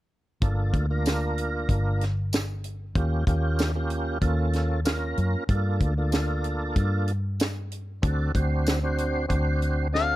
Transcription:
0.41 G1 A#3 D4 F4 A4, kick, closed hi-hat
0.74 D2, kick, closed hi-hat
0.90 A#3 D4 F4 A#4
1.06 snare, closed hi-hat, tambourine
1.38 closed hi-hat
1.69 G1, kick, closed hi-hat
2.01 snare, closed hi-hat
2.33 snare, closed hi-hat, tambourine
2.64 closed hi-hat
2.95 D#2 A#3 C#4 F4 G4, kick, closed hi-hat
3.27 D#2 A#3 C#4 F4 G4, kick, closed hi-hat
3.59 snare, closed hi-hat, tambourine
3.75 A#3 C#4 F4 G4
3.90 closed hi-hat
4.21 D#2 A#3 C#4 F4 A4, kick, closed hi-hat
4.53 snare, closed hi-hat
4.85 A#3 C#4 F4 A#4, snare, closed hi-hat, tambourine
5.17 F#2, closed hi-hat
5.49 G2 A#3 D4 F4 A4, kick, closed hi-hat
5.81 D2, kick, closed hi-hat
5.97 A#3 D4 F4 A4
6.12 snare, closed hi-hat, tambourine
6.44 closed hi-hat
6.76 G2, kick, closed hi-hat
7.08 closed hi-hat
7.40 snare, closed hi-hat, tambourine
7.72 closed hi-hat
8.02 D2 C4 D4 F#4 A4, kick, closed hi-hat
8.35 D2 C4 D4 F#4 C5, kick, closed hi-hat
8.66 snare, closed hi-hat, tambourine
8.83 C4 D4 F#4 C5
8.98 closed hi-hat
9.28 D2 C4 D4 F#4 C5, kick, closed hi-hat
9.62 closed hi-hat
9.92 C4 D4 F#4 A4 F5, snare

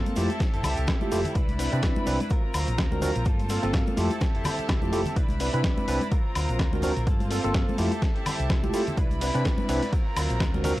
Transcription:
Already playing: A#3 C4 F4 A4 C5 A5
0.06 closed hi-hat, high conga, shaker
0.16 F2 G3 A3 C4 E4 F4 G4 A4 E5, open hi-hat, shaker
0.29 C4 E4 A4, closed hi-hat, high conga, shaker
0.40 kick, snare, closed hi-hat, shaker
0.54 F1 C4 E4 A4, closed hi-hat, shaker
0.63 C2 G3 C4 E4 A4, open hi-hat, low conga, high woodblock, shaker
0.77 C2, closed hi-hat, shaker
0.87 G3 C4 E4 A4, kick, snare, closed hi-hat, high woodblock, shaker
1.01 A3 C4 E4 F4 G4 A4, high conga, shaker
1.11 F1 G3 A3 C4 E4 F4 G4 A4, open hi-hat, shaker
1.25 closed hi-hat, low conga, shaker
1.35 C2 G3 D4 E4 B4 D5 B5, kick, closed hi-hat, shaker
1.49 closed hi-hat, high conga, shaker
1.59 G3 C4 D4 E4 B4, open hi-hat, shaker
1.72 C3 C4 D4 E4 B4, closed hi-hat, shaker
1.83 C2 G3 D4 E4 B4, kick, snare, closed hi-hat, shaker
1.96 high conga, shaker
2.06 C2 G3 C4 D4 E4 B4, open hi-hat, shaker
2.20 D4 E4 B4, closed hi-hat, high conga, shaker
2.30 F#3 C4 F4 A#4 C5 A#5, kick, closed hi-hat, shaker
2.44 C4 F4 A#4
2.54 D2 F#3 C4 F4 A#4, open hi-hat, high woodblock, shaker
2.68 A#1, closed hi-hat, shaker
2.78 F#3 C4 F4 A#4, kick, snare, closed hi-hat, high woodblock, shaker
2.91 C4 D4 F4 F#4 A#4, high conga, shaker
3.02 F#3 C4 D4 F4 F#4 A#4, open hi-hat, low conga, shaker
3.15 A#1 C4 F4 A#4, closed hi-hat, shaker
3.25 A#3 C4 F4 A4 A5, kick, closed hi-hat, shaker
3.39 closed hi-hat, high conga, shaker
3.49 A#3 C4 F4 A4, open hi-hat, shaker
3.63 G1 A#3 C4 F4 A4, closed hi-hat, shaker
3.73 A#3 C4 F4 A4, kick, snare, closed hi-hat, shaker
3.87 high conga, shaker
3.97 F2 G3 A3 C4 E4 F4 G4 A4 E5 A5, open hi-hat, shaker
4.10 C4 E4 A4, closed hi-hat, high conga, shaker
4.21 kick, snare, closed hi-hat, shaker
4.34 F1 C4 E4 A4, closed hi-hat
4.44 G3 C4 E4 A4, open hi-hat, low conga, high woodblock, shaker
4.58 muted fingered electric bass stroke, closed hi-hat, shaker
4.69 C2 G3 C4 E4 A4, kick, snare, closed hi-hat, high woodblock, shaker
4.82 F2 A3 C4 E4 F4 G4 A4, high conga, shaker
4.92 F1 G3 A3 C4 E4 F4 G4 A4, open hi-hat, shaker
5.06 closed hi-hat, low conga, shaker
5.16 C2 G3 D4 E4 B4 D5 B5, kick, closed hi-hat, shaker
5.29 closed hi-hat, high conga, shaker
5.40 G3 C4 D4 E4 B4, open hi-hat, shaker
5.53 C3 C4 D4 E4 B4, closed hi-hat, shaker
5.64 C2 G3 D4 E4 B4, kick, snare, closed hi-hat, shaker
5.78 high conga, shaker
5.88 C2 G3 C4 D4 E4 B4, open hi-hat, shaker
6.01 D4 E4 B4, closed hi-hat, high conga, shaker
6.11 F#3 C4 F4 A#4 C5 A#5, kick, closed hi-hat, shaker
6.25 C4 F4 A#4
6.35 D2 F#3 C4 F4 A#4, open hi-hat, high woodblock, shaker
6.49 A#1, closed hi-hat, shaker
6.59 D2 F#3 C4 F4 A#4, kick, snare, closed hi-hat, high woodblock, shaker
6.72 C4 D4 F4 F#4 A#4, high conga, shaker
6.82 F#3 C4 D4 F4 F#4 A#4, open hi-hat, low conga, shaker
6.96 A#1 C4 F4 A#4, closed hi-hat, shaker
7.06 G2 A#3 C4 F4 A4 C5 A5, kick, closed hi-hat, shaker
7.20 closed hi-hat, high conga, shaker
7.30 A#3 C4 F4 A4, open hi-hat, shaker
7.44 G1 A#3 C4 F4 A4, closed hi-hat, shaker
7.54 A#3 C4 F4 A4, kick, snare, closed hi-hat, shaker
7.68 high conga, shaker
7.78 F2 G3 A3 C4 E4 F4 G4 A4 E5, open hi-hat, shaker
7.91 C4 E4 A4, closed hi-hat, high conga, shaker
8.02 kick, snare, closed hi-hat, shaker
8.15 C4 E4 A4, closed hi-hat
8.26 G3 C4 E4 A4, open hi-hat, low conga, high woodblock, shaker
8.39 C2, closed hi-hat, shaker
8.50 G3 C4 E4 A4, kick, snare, closed hi-hat, high woodblock, shaker
8.63 A3 C4 E4 F4 G4 A4, high conga, shaker
8.73 G3 A3 C4 E4 F4 G4 A4, open hi-hat, shaker
8.87 C4 E4 A4, closed hi-hat, low conga, shaker
8.97 C2 G3 D4 E4 B4 D5 B5, kick, closed hi-hat, shaker
9.11 closed hi-hat, high conga, shaker
9.21 G3 C4 D4 E4 B4, open hi-hat, ride, shaker
9.34 C3 C4 D4 E4 B4, closed hi-hat, shaker
9.45 C2 G3 D4 E4 B4, kick, snare, closed hi-hat, shaker
9.58 high conga, shaker
9.69 C2 G3 C4 D4 E4 B4, open hi-hat, ride, shaker
9.82 D4 E4 B4, closed hi-hat, high conga, shaker
9.92 F#3 C4 F4 A#4 C5 A#5, kick, closed hi-hat, shaker
10.06 C4 F4 A#4
10.16 D2 F#3 C4 F4 A#4, open hi-hat, ride, high woodblock, shaker
10.30 A#1, closed hi-hat, shaker
10.40 D2 F#3 C4 F4 A#4, kick, snare, closed hi-hat, high woodblock, shaker
10.54 C4 D4 F4 F#4 A#4, high conga, shaker
10.64 F#3 C4 D4 F4 F#4 A#4, open hi-hat, ride, low conga, shaker

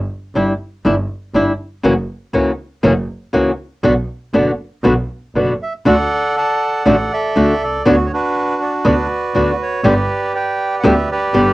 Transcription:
0.35 G1 G3 D4 E4
0.85 G1 G3 D4 E4
1.34 G1 G3 D4 E4
1.83 F#1 C#3 E3 A#3 C#4 F#4
2.33 C#2 C#3 E3 A#3 C#4 F#4
2.83 F#1 C#3 E3 A#3 C#4 F#4
3.33 C#2 C#3 E3 A#3 C#4 F#4
3.83 B1 B2 D3 B3 D4 F#4
4.33 F#1 B2 D3 B3 D4 F#4
4.83 B1 B2 D3 B3 D4 F#4
5.35 F#1 B2 D3 B3 D4 F#4
5.63 E5
5.85 D2 D3 A3 D4 F#4 A4 D5 F#5
6.37 D5 F#5 A5
6.86 A1 D3 A3 D4 F#4 A4 D5 F#5
7.13 A4 E5
7.36 D2 D3 A3 D4 F#4
7.61 C2 D5
7.85 D2 D3 B3 D4 F#4 C#5
8.06 C#5
8.13 D4 F#4 B4
8.62 D5
8.84 D2 D3 B3 D4 F#4 B4 D5
9.34 D2 D3 B3 D4 F#4
9.63 C#5
9.84 G1 D3 G3 B3 D4 G4 B4 D5
10.35 B4 D5 G5
10.80 D2 D3 G3 F#5
10.84 B3 D4 G4 B4 E5
11.11 G4 B4 D5
11.34 G1 D3 G3 B3 D4 G4

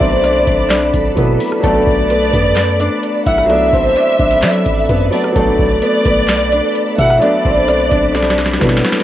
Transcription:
Already playing: F#3 A3 B3 D4 E4 A4 D5 E5 B5
0.01 B1 C4 C5, kick
0.24 D4 D5, cross-stick, closed hi-hat
0.47 B1 D4 D5, kick, closed hi-hat
0.70 D4 D5, snare, clap, closed hi-hat
0.94 B1, kick, closed hi-hat
1.15 B2 F#3 A3 B3 E4 B4, kick, closed hi-hat
1.40 open hi-hat
1.52 cross-stick
1.60 B1 F#3 A3 A4 D5, kick, closed hi-hat
1.64 A3 B3 D4
1.87 B1, kick
2.10 B3 B4, closed hi-hat
2.33 F#2 B3 B4, kick, closed hi-hat
2.56 snare, clap, closed hi-hat
2.80 D4 D5, closed hi-hat
3.03 closed hi-hat
3.26 B1 E4 E5 F#5, kick, closed hi-hat
3.38 cross-stick
3.46 F#3 A3 D5 E5, closed hi-hat
3.51 B3 D4
3.73 B1 C4 C5, kick
3.96 D4 D5, closed hi-hat
4.19 B1 D4 D5, kick, closed hi-hat
4.31 closed hi-hat
4.42 F#3 D4 D5, snare, clap, closed hi-hat
4.66 A1, kick, closed hi-hat
4.89 F#2 B3 B4, kick, closed hi-hat
5.11 F#3 A3 B3 D4 D5, open hi-hat
5.24 cross-stick
5.32 B1 F#3 A3 A4 D5 B5, kick, closed hi-hat
5.36 A3 B3 D4
5.59 B1, kick
5.82 B3 B4, closed hi-hat
6.05 B1 B3 B4, kick, closed hi-hat
6.28 snare, clap, closed hi-hat
6.52 D4 D5, closed hi-hat
6.75 closed hi-hat
6.98 B2 E4 E5 F#5, kick, closed hi-hat
7.10 cross-stick
7.18 F#3 A3 D5, closed hi-hat
7.22 B3 D4
7.45 B1 C4 C5, kick
7.68 D4 D5, cross-stick, closed hi-hat
7.91 B1 D4 D5, kick, closed hi-hat
8.15 D4 D5, snare, closed hi-hat
8.22 snare
8.30 snare
8.38 snare, closed hi-hat
8.46 snare
8.53 snare
8.59 B2 F#3 A3 B3 E4 B4, kick, snare, closed hi-hat
8.69 snare
8.77 snare
8.84 snare, open hi-hat
8.92 snare
9.00 snare

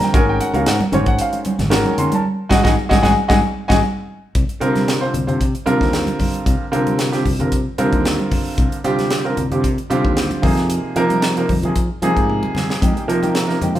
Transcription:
0.02 G5, muted clean electric guitar stroke, snare, closed hi-hat, high conga
0.14 G#1 D#3 G#3 A#3 C#4 F#4 A#4 G#5, kick, closed hi-hat
0.29 G5
0.41 F#5, muted clean electric guitar stroke, closed hi-hat
0.54 C#2 D#3 G#3 A#3 C#4 F#4 A#4 F5, closed hi-hat
0.66 G#2 F#5, muted clean electric guitar stroke, snare, closed hi-hat
0.80 F#4 A#4, muted fretless electric bass stroke, muted clean electric guitar stroke, high conga
0.92 G#1 D#3 G#3 A#3 C#4 F#4 C5 C#5, closed hi-hat, high conga, low conga
1.06 F#5, muted clean electric guitar stroke, kick, closed hi-hat
1.19 F5, closed hi-hat
1.33 muted clean electric guitar stroke, closed hi-hat
1.45 muted clean electric guitar stroke, closed hi-hat, high conga
1.58 G#1 F#4 G#4, muted clean electric guitar stroke, snare, closed hi-hat, low conga
1.70 D#3 G#3 A#3 C#4 F#4 A#4, snare, closed hi-hat
1.86 high conga
1.98 D#3 A#3 C#4 F#4 C6, closed hi-hat, low conga
2.12 A5, muted clean electric guitar stroke, closed hi-hat, high conga
2.49 G#1 G#3 C#4 D#4 F#4 G#4 D#5 F#5 G#5, kick, snare, high conga
2.63 G#1 G#3 C#4 D#4 F#4 G#4 D#5 F#5 G#5, kick, snare, high conga
2.89 G#1 G#3 C#4 D#4 F#4 G#4 D#5 F#5 G#5, kick, snare, high conga
3.02 G#1 G#3 C#4 D#4 F#4 G#4 D#5 F#5 G#5, kick, snare, high conga
3.28 G#1 G#3 C#4 D#4 F#4 G#4 D#5 F#5 G#5, kick, snare, high conga
3.68 G#1 G#3 C#4 D#4 F#4 G#4 D#5 F#5 G#5, kick, snare, high conga
4.35 C2, kick, closed hi-hat
4.49 muted fretless electric bass stroke, closed hi-hat
4.60 C3 D3 G3 C4 F4 A#4, closed hi-hat
4.76 snare, closed hi-hat, high conga
4.88 snare, closed hi-hat
5.01 D3 G3 C4 F4 C5
5.13 C2 F4 C5, closed hi-hat, low conga
5.27 C3 D3 G3 C4 F4 C5, closed hi-hat, low conga
5.39 F4 G4, kick, closed hi-hat
5.55 muted fretless electric bass stroke, closed hi-hat
5.66 C3 D3 G3 C4 F4 A#4, closed hi-hat, high conga
5.81 D#2, kick, snare
5.93 snare, closed hi-hat
6.07 closed hi-hat, high conga
6.20 kick, open hi-hat, high conga, low conga
6.34 closed hi-hat
6.46 C2, kick, closed hi-hat
6.60 muted fretless electric bass stroke
6.71 C3 D3 G3 C4 F4 A#4, closed hi-hat
6.87 closed hi-hat, high conga
6.99 snare, closed hi-hat
7.12 D3 G3 C4 F4 G4, snare, closed hi-hat
7.25 C2 F4 A#4, kick, open hi-hat, low conga
7.39 C3 D3 G3 C4 F4 A#4, closed hi-hat, low conga
7.52 F4 C5, kick, closed hi-hat
7.66 muted fretless electric bass stroke
7.78 C3 D3 G3 C4 F4 A#4, closed hi-hat, high conga
7.93 D#2, kick, closed hi-hat
8.05 snare, closed hi-hat
8.20 high conga
8.32 kick, open hi-hat, high conga, low conga
8.58 C2, kick, closed hi-hat
8.72 closed hi-hat
8.84 C3 D3 G3 C4 F4 G4, closed hi-hat
8.99 snare, closed hi-hat, high conga
9.10 snare, closed hi-hat
9.25 D3 G3 C4 F4 A#4
9.37 C2 F4 G4, closed hi-hat, low conga
9.51 C3 D3 G3 C4 F4 G4, closed hi-hat, low conga
9.64 F4 A#4, kick, closed hi-hat
9.78 muted fretless electric bass stroke, closed hi-hat
9.90 C3 D3 G3 C4 F4 G4, closed hi-hat, high conga
10.05 D#2, kick
10.17 snare, closed hi-hat
10.31 closed hi-hat, high conga
10.42 F2 C3 F3 A#3 D#4 G#4, kick, open hi-hat, high conga, low conga
10.57 snare, closed hi-hat
10.70 closed hi-hat
10.84 muted fretless electric bass stroke
10.96 C3 F3 A#3 D#4 A#4, closed hi-hat
11.10 closed hi-hat, high conga
11.22 snare, closed hi-hat
11.37 C3 F3 A#3 D#4 A#4, closed hi-hat
11.49 F2 D#4 F4, kick, open hi-hat, high conga, low conga
11.63 C3 F3 A#3 D#4 G#4, closed hi-hat, low conga
11.76 D#4 G#4, kick, closed hi-hat
11.90 muted fretless electric bass stroke
12.02 C3 F3 A#3 D#4 G#4, closed hi-hat, high conga
12.17 G#2, kick, closed hi-hat
12.30 high tom
12.43 high conga
12.55 snare, high conga, low conga
12.70 snare
12.82 F2 G#3 A#3 D#4 G4, kick, closed hi-hat
12.96 A#3 D#4 G4, muted fretless electric bass stroke, closed hi-hat
13.08 C3 F3 A#3 D#4 A#4, muted clean electric guitar stroke, closed hi-hat
13.23 A#3 D#4 G4, closed hi-hat, high conga
13.35 muted clean electric guitar stroke, snare, closed hi-hat
13.48 C3 F3 A#3 D#4 A#4, snare
13.61 F2 G#3 A#3 D#4 F4 G4, closed hi-hat, low conga
13.75 C3 F3 A#3 D#4 F4, muted clean electric guitar stroke, closed hi-hat, low conga

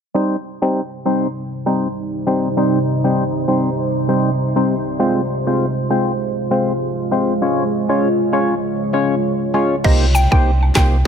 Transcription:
0.14 C3 G3 C4 D#4 C5
0.62 G3 C4 D#4 C5
1.05 G3 C4 D#4 C5
1.66 G3 C4 D#4 C5
2.27 G3 C4 D#4 C5
2.57 G3 C4 D#4 C5
3.04 G3 C4 D#4 C5
3.48 G3 C4 D#4 C5
4.08 G3 C4 D#4 C5
4.56 G3 C4 D#4 C5
4.99 G#3 C4 F4 C5
5.47 G#3 C4 F4 C5
5.90 G#3 C4 F4 C5
6.51 G#3 C4 F4 C5
7.11 G#3 C4 F4 C5
7.42 C#3 G#3 C#4 F4 C#5
7.89 G#3 C#4 F4 C#5
8.33 G#3 C#4 F4 C#5
8.93 G#3 C#4 F4 C#5
9.54 G#3 C#4 F4 C#5
9.84 C2 C3 A#3 D#4 G4 C5 D#5, kick, crash
10.15 G5, cabasa, high woodblock
10.31 C2 A#3 D#4 G4 C5 G5, kick
10.63 high woodblock
10.75 C2 A#3 D#4 G4 C5 G5, kick, snare, clap, cabasa

